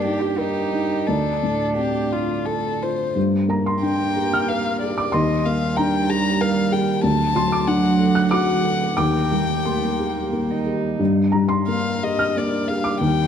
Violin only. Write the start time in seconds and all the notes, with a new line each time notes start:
0.05 G4
0.39 G4
1.07 A4
1.77 G4
2.12 F4
2.46 A4
2.83 C5
3.82 G5
4.48 F5
4.82 D5
5.14 D#5
5.46 F5
5.77 G5
6.10 A#5
6.41 F5
6.72 G5
7.04 A5
7.68 F#5
8.32 F#5
8.97 G5
11.68 F5
12.04 D#5
12.37 D5
12.68 F5
13.00 G5